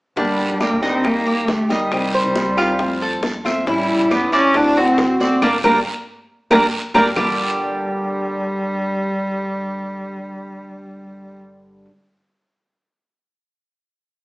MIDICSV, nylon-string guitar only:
0, 0, Header, 1, 3, 480
1, 0, Start_track
1, 0, Key_signature, -2, "minor"
1, 0, Tempo, 437318
1, 190, Time_signature, 4, 2, 24, 8
1, 7390, Tempo, 433839
1, 15701, End_track
2, 0, Start_track
2, 0, Title_t, "Nylon-string guitar"
2, 0, Program_c, 0, 24
2, 175, Note_on_c, 0, 50, 65
2, 187, Note_on_c, 0, 55, 70
2, 191, Note_on_c, 0, 58, 65
2, 194, Note_on_c, 0, 62, 67
2, 199, Note_on_c, 0, 67, 74
2, 643, Note_off_c, 0, 55, 0
2, 650, Note_off_c, 0, 58, 0
2, 653, Note_off_c, 0, 50, 0
2, 657, Note_on_c, 0, 55, 48
2, 662, Note_off_c, 0, 62, 0
2, 663, Note_on_c, 0, 58, 49
2, 664, Note_off_c, 0, 67, 0
2, 674, Note_on_c, 0, 62, 50
2, 680, Note_on_c, 0, 67, 52
2, 889, Note_off_c, 0, 67, 0
2, 893, Note_off_c, 0, 55, 0
2, 897, Note_off_c, 0, 58, 0
2, 898, Note_off_c, 0, 62, 0
2, 902, Note_on_c, 0, 67, 61
2, 911, Note_on_c, 0, 62, 53
2, 917, Note_on_c, 0, 58, 51
2, 926, Note_on_c, 0, 55, 53
2, 1126, Note_off_c, 0, 55, 0
2, 1132, Note_off_c, 0, 58, 0
2, 1136, Note_off_c, 0, 67, 0
2, 1139, Note_on_c, 0, 55, 47
2, 1141, Note_off_c, 0, 62, 0
2, 1145, Note_on_c, 0, 58, 49
2, 1155, Note_on_c, 0, 63, 50
2, 1157, Note_on_c, 0, 67, 52
2, 1605, Note_off_c, 0, 55, 0
2, 1611, Note_off_c, 0, 58, 0
2, 1611, Note_off_c, 0, 63, 0
2, 1617, Note_off_c, 0, 67, 0
2, 1855, Note_on_c, 0, 67, 64
2, 1862, Note_on_c, 0, 63, 56
2, 1872, Note_on_c, 0, 58, 55
2, 1876, Note_on_c, 0, 55, 52
2, 2093, Note_off_c, 0, 67, 0
2, 2097, Note_off_c, 0, 55, 0
2, 2097, Note_off_c, 0, 63, 0
2, 2097, Note_on_c, 0, 48, 65
2, 2102, Note_off_c, 0, 58, 0
2, 2102, Note_on_c, 0, 51, 66
2, 2112, Note_on_c, 0, 55, 70
2, 2115, Note_on_c, 0, 60, 68
2, 2121, Note_on_c, 0, 67, 69
2, 2566, Note_off_c, 0, 51, 0
2, 2575, Note_off_c, 0, 48, 0
2, 2580, Note_off_c, 0, 55, 0
2, 2580, Note_on_c, 0, 51, 42
2, 2584, Note_off_c, 0, 60, 0
2, 2587, Note_off_c, 0, 67, 0
2, 2593, Note_on_c, 0, 55, 44
2, 2599, Note_on_c, 0, 60, 50
2, 2602, Note_on_c, 0, 67, 46
2, 2808, Note_off_c, 0, 67, 0
2, 2812, Note_off_c, 0, 60, 0
2, 2816, Note_off_c, 0, 51, 0
2, 2821, Note_on_c, 0, 67, 61
2, 2823, Note_off_c, 0, 55, 0
2, 2826, Note_on_c, 0, 60, 58
2, 2836, Note_on_c, 0, 55, 52
2, 2842, Note_on_c, 0, 51, 53
2, 3050, Note_off_c, 0, 51, 0
2, 3055, Note_on_c, 0, 53, 45
2, 3057, Note_off_c, 0, 67, 0
2, 3059, Note_off_c, 0, 60, 0
2, 3062, Note_off_c, 0, 55, 0
2, 3066, Note_on_c, 0, 57, 46
2, 3073, Note_on_c, 0, 60, 53
2, 3078, Note_on_c, 0, 65, 48
2, 3529, Note_off_c, 0, 53, 0
2, 3533, Note_off_c, 0, 57, 0
2, 3533, Note_off_c, 0, 60, 0
2, 3538, Note_off_c, 0, 65, 0
2, 3783, Note_on_c, 0, 65, 63
2, 3789, Note_on_c, 0, 60, 57
2, 3795, Note_on_c, 0, 57, 56
2, 3801, Note_on_c, 0, 53, 51
2, 4018, Note_off_c, 0, 53, 0
2, 4019, Note_off_c, 0, 65, 0
2, 4022, Note_off_c, 0, 60, 0
2, 4022, Note_on_c, 0, 52, 70
2, 4025, Note_off_c, 0, 57, 0
2, 4030, Note_on_c, 0, 55, 72
2, 4036, Note_on_c, 0, 61, 75
2, 4041, Note_on_c, 0, 64, 74
2, 4484, Note_off_c, 0, 52, 0
2, 4492, Note_off_c, 0, 55, 0
2, 4497, Note_on_c, 0, 52, 49
2, 4498, Note_off_c, 0, 61, 0
2, 4504, Note_off_c, 0, 64, 0
2, 4505, Note_on_c, 0, 55, 50
2, 4511, Note_on_c, 0, 61, 49
2, 4517, Note_on_c, 0, 64, 45
2, 4729, Note_off_c, 0, 64, 0
2, 4736, Note_off_c, 0, 52, 0
2, 4738, Note_off_c, 0, 61, 0
2, 4740, Note_off_c, 0, 55, 0
2, 4742, Note_on_c, 0, 64, 63
2, 4751, Note_on_c, 0, 61, 52
2, 4763, Note_on_c, 0, 55, 53
2, 4978, Note_off_c, 0, 64, 0
2, 4983, Note_off_c, 0, 61, 0
2, 4986, Note_on_c, 0, 50, 46
2, 4988, Note_off_c, 0, 55, 0
2, 4993, Note_on_c, 0, 57, 50
2, 4999, Note_on_c, 0, 60, 53
2, 5009, Note_on_c, 0, 66, 50
2, 5450, Note_off_c, 0, 50, 0
2, 5456, Note_off_c, 0, 57, 0
2, 5459, Note_off_c, 0, 60, 0
2, 5463, Note_off_c, 0, 66, 0
2, 5705, Note_on_c, 0, 66, 60
2, 5715, Note_on_c, 0, 60, 58
2, 5725, Note_on_c, 0, 57, 50
2, 5939, Note_off_c, 0, 66, 0
2, 5944, Note_off_c, 0, 57, 0
2, 5944, Note_off_c, 0, 60, 0
2, 5944, Note_on_c, 0, 55, 90
2, 5948, Note_on_c, 0, 58, 87
2, 5954, Note_on_c, 0, 62, 88
2, 6102, Note_off_c, 0, 58, 0
2, 6103, Note_off_c, 0, 55, 0
2, 6103, Note_off_c, 0, 62, 0
2, 6185, Note_on_c, 0, 55, 89
2, 6187, Note_on_c, 0, 58, 86
2, 6190, Note_on_c, 0, 62, 84
2, 6341, Note_off_c, 0, 58, 0
2, 6342, Note_off_c, 0, 55, 0
2, 6344, Note_off_c, 0, 62, 0
2, 7148, Note_on_c, 0, 55, 87
2, 7148, Note_on_c, 0, 58, 83
2, 7150, Note_on_c, 0, 62, 81
2, 7301, Note_off_c, 0, 58, 0
2, 7302, Note_off_c, 0, 55, 0
2, 7302, Note_off_c, 0, 62, 0
2, 7623, Note_on_c, 0, 55, 86
2, 7628, Note_on_c, 0, 58, 84
2, 7635, Note_on_c, 0, 62, 86
2, 7781, Note_off_c, 0, 55, 0
2, 7782, Note_off_c, 0, 58, 0
2, 7782, Note_off_c, 0, 62, 0
2, 7858, Note_on_c, 0, 43, 70
2, 7866, Note_on_c, 0, 50, 67
2, 7871, Note_on_c, 0, 55, 65
2, 7882, Note_on_c, 0, 58, 73
2, 7883, Note_on_c, 0, 62, 73
2, 7890, Note_on_c, 0, 67, 71
2, 13082, Note_off_c, 0, 43, 0
2, 13090, Note_off_c, 0, 50, 0
2, 13094, Note_off_c, 0, 55, 0
2, 13105, Note_off_c, 0, 58, 0
2, 13107, Note_off_c, 0, 62, 0
2, 13113, Note_off_c, 0, 67, 0
2, 15701, End_track
3, 0, Start_track
3, 0, Title_t, "Muted nylon-string guitar strokes"
3, 1618, Note_on_c, 9, 29, 52
3, 1728, Note_off_c, 9, 29, 0
3, 3540, Note_on_c, 9, 29, 53
3, 3650, Note_off_c, 9, 29, 0
3, 5464, Note_on_c, 9, 29, 52
3, 5573, Note_off_c, 9, 29, 0
3, 15701, End_track
0, 0, End_of_file